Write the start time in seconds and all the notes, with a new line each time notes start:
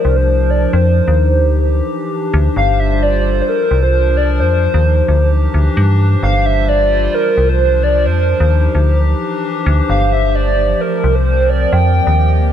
Already playing: F3 G4 A#4 C5
0.05 C2 A#4
0.16 C5
0.50 D5
0.73 F2 C5
1.04 D#2 G4
1.42 D2 E3
1.67 D4
1.93 C5
2.34 D2
2.56 G1 F5
2.67 F4
2.80 E5
3.03 D5
3.41 C5
3.48 F3 A#4
3.65 A#4
3.71 C2
3.83 C5
4.17 D5
4.40 F2 C5
4.67 G4
4.74 D#2
5.08 D2 E3
5.24 D4
5.54 D2
5.60 C5
5.77 G2
6.23 G1 F5
6.45 F4 E5
6.68 D5
7.14 F3 A#4
7.37 C2
7.49 C5
7.56 A#4
7.83 D5
8.06 F2 C5
8.28 G4
8.40 D#2
8.75 D2 E3
8.94 D4
9.26 C5
9.66 D2
9.89 G1 F3 F5
10.12 E5
10.35 D5
10.81 A#4
10.97 C4 A#4
11.04 C2
11.15 C5
11.49 D5
11.72 F2 G5
11.82 G4
12.07 D#2
12.41 D2 E3
12.49 C4